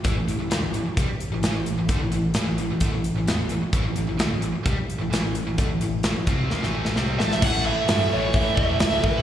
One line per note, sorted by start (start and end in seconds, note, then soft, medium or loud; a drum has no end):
0.04 0.16 A1 loud
0.04 0.15 A2 medium
0.04 0.16 E3 loud
0.04 kick loud
0.04 closed hi-hat medium
0.17 0.27 A1 medium
0.17 0.26 A2 medium
0.17 0.27 E3 medium
0.28 0.39 A1 medium
0.28 0.37 A2 medium
0.28 0.38 E3 medium
0.28 closed hi-hat medium
0.39 0.51 A1 medium
0.39 0.50 A2 medium
0.39 0.50 E3 medium
0.50 0.62 D2 medium
0.50 0.61 D3 medium
0.50 0.62 A3 medium
0.50 snare loud
0.50 closed hi-hat medium
0.62 0.73 A1 medium
0.62 0.72 A2 medium
0.62 0.73 E3 medium
0.73 0.84 A1 medium
0.73 0.84 A2 medium
0.73 0.86 E3 medium
0.73 closed hi-hat medium
0.85 muted picked electric bass stroke soft
0.85 muted overdriven electric guitar stroke medium
0.97 1.07 C2 loud
0.97 1.08 C3 medium
0.97 1.08 G3 loud
0.97 kick loud
0.97 closed hi-hat medium
1.08 muted picked electric bass stroke soft
1.08 muted overdriven electric guitar stroke medium
1.20 closed hi-hat medium
1.30 1.41 A1 medium
1.30 1.42 A2 medium
1.30 1.43 E3 medium
1.42 1.53 A1 medium
1.42 1.54 A2 medium
1.42 1.54 E3 medium
1.42 snare loud
1.42 closed hi-hat medium
1.54 1.76 A1 medium
1.54 1.73 A2 medium
1.54 1.73 E3 medium
1.66 closed hi-hat medium
1.77 1.88 A1 medium
1.77 1.89 A2 medium
1.77 1.90 E3 medium
1.89 1.99 D2 medium
1.89 2.00 D3 loud
1.89 2.01 A3 loud
1.89 kick loud
1.89 closed hi-hat medium
1.99 2.11 A1 medium
1.99 2.13 A2 medium
1.99 2.13 E3 medium
2.12 2.33 A1 medium
2.12 2.32 A2 medium
2.12 2.32 E3 medium
2.12 closed hi-hat medium
2.34 2.46 A1 medium
2.34 2.47 A2 medium
2.34 snare loud
2.34 closed hi-hat medium
2.38 2.47 E3 medium
2.47 2.58 A1 medium
2.47 2.58 A2 medium
2.47 2.59 E3 medium
2.58 2.69 A1 medium
2.58 2.71 A2 medium
2.58 2.71 E3 medium
2.58 closed hi-hat medium
2.70 2.80 A1 medium
2.70 2.82 A2 medium
2.70 2.83 E3 medium
2.80 2.91 D2 medium
2.80 2.93 D3 medium
2.80 2.94 A3 medium
2.80 kick loud
2.80 closed hi-hat medium
2.91 3.14 A1 medium
2.91 3.12 A2 medium
2.91 3.12 E3 medium
3.04 closed hi-hat medium
3.15 3.26 A1 medium
3.15 3.27 A2 medium
3.15 3.26 E3 medium
3.27 3.38 E2 medium
3.27 3.38 E3 medium
3.27 3.39 B3 medium
3.27 snare loud
3.27 closed hi-hat medium
3.39 3.50 A1 medium
3.39 3.51 A2 medium
3.39 3.51 E3 medium
3.49 3.61 A1 medium
3.49 3.62 A2 medium
3.49 3.63 E3 medium
3.49 closed hi-hat medium
3.62 muted picked electric bass stroke soft
3.62 muted overdriven electric guitar stroke medium
3.73 3.84 A1 loud
3.73 3.85 A2 medium
3.73 3.85 E3 loud
3.73 kick loud
3.73 closed hi-hat medium
3.85 3.96 A1 medium
3.85 3.97 A2 medium
3.85 3.97 E3 medium
3.96 4.08 A1 medium
3.96 4.08 A2 medium
3.96 4.08 E3 medium
3.96 closed hi-hat medium
4.09 4.20 A1 medium
4.09 4.20 A2 medium
4.09 4.20 E3 medium
4.19 4.31 D2 medium
4.19 4.31 D3 medium
4.19 4.31 A3 medium
4.19 snare loud
4.19 closed hi-hat medium
4.30 4.42 A1 medium
4.30 4.39 A2 medium
4.34 4.43 A2 medium
4.34 4.43 E3 medium
4.42 4.54 A1 medium
4.42 4.54 A2 medium
4.42 4.55 E3 medium
4.42 closed hi-hat medium
4.55 muted picked electric bass stroke soft
4.55 muted overdriven electric guitar stroke medium
4.65 4.76 C2 loud
4.65 4.77 C3 medium
4.65 4.78 G3 medium
4.65 kick loud
4.65 closed hi-hat medium
4.77 muted picked electric bass stroke soft
4.77 muted overdriven electric guitar stroke medium
4.90 closed hi-hat medium
5.00 5.11 A1 medium
5.00 5.12 A2 medium
5.00 5.13 E3 medium
5.12 5.23 A1 loud
5.12 5.23 A2 medium
5.12 5.24 E3 loud
5.12 snare loud
5.12 closed hi-hat medium
5.24 5.45 A1 medium
5.24 5.43 A2 medium
5.24 5.43 E3 medium
5.35 closed hi-hat medium
5.47 5.58 A1 medium
5.47 5.58 A2 medium
5.47 5.58 E3 medium
5.58 5.69 D2 loud
5.58 5.69 D3 medium
5.58 5.69 A3 loud
5.58 kick medium
5.58 closed hi-hat medium
5.69 5.79 A1 medium
5.69 5.81 A2 medium
5.69 5.81 E3 medium
5.80 6.02 A1 medium
5.80 6.00 A2 medium
5.80 6.00 E3 medium
5.80 closed hi-hat medium
6.03 6.15 A1 medium
6.03 6.15 A2 medium
6.03 6.16 E3 medium
6.03 snare loud
6.03 closed hi-hat medium
6.16 6.26 A1 medium
6.16 6.27 A2 medium
6.16 6.28 E3 medium
6.27 6.49 C2 medium
6.27 6.50 C3 medium
6.27 6.50 G3 loud
6.27 6.50 C4 medium
6.27 kick loud
6.27 closed hi-hat medium
6.50 6.61 D#2 medium
6.50 6.61 D#3 medium
6.50 6.62 A#3 medium
6.50 snare medium
6.61 6.95 A1 medium
6.61 6.96 A2 medium
6.61 6.96 E3 medium
6.61 6.96 A3 medium
6.61 snare medium
6.85 snare medium
6.96 7.18 C2 medium
6.96 7.19 C3 medium
6.96 7.20 G3 medium
6.96 7.20 C4 medium
6.96 snare medium
7.19 7.41 A1 medium
7.19 7.41 A2 medium
7.19 7.42 E3 medium
7.19 7.43 A3 medium
7.19 7.32 A5 loud
7.19 snare medium
7.32 7.43 E5 medium
7.32 snare medium
7.42 7.73 A1 loud
7.42 7.65 A2 loud
7.42 9.22 A2 medium
7.42 7.67 E3 medium
7.42 9.22 E3 medium
7.42 7.66 A3 loud
7.42 9.22 A3 loud
7.42 7.65 F#5 loud
7.42 kick loud
7.42 crash loud
7.66 7.87 A2 medium
7.66 7.89 E3 medium
7.66 7.88 A3 loud
7.66 8.13 E5 medium
7.88 8.05 G2 medium
7.88 8.11 A2 medium
7.88 8.13 E3 loud
7.88 8.12 A3 loud
7.88 snare loud
7.88 open hi-hat medium
7.99 snare soft
8.12 8.27 A1 medium
8.12 8.35 A2 medium
8.12 8.36 E3 medium
8.12 8.37 A3 medium
8.12 8.36 C#5 medium
8.33 8.50 A1 medium
8.33 8.57 A2 loud
8.33 8.55 E5 loud
8.33 kick medium
8.33 open hi-hat medium
8.37 8.58 E3 loud
8.37 8.59 A3 loud
8.56 8.73 E1 medium
8.56 8.81 A2 medium
8.56 8.81 E3 medium
8.56 8.82 A3 medium
8.56 9.05 E5 loud
8.56 kick medium
8.79 8.96 C#2 medium
8.79 9.02 A2 medium
8.79 9.03 E3 loud
8.79 9.04 A3 medium
8.79 snare loud
8.79 open hi-hat medium
9.03 9.19 A1 medium
9.03 9.22 A2 medium
9.03 9.22 E3 medium
9.03 9.22 A3 medium
9.03 9.22 B4 medium
9.03 kick medium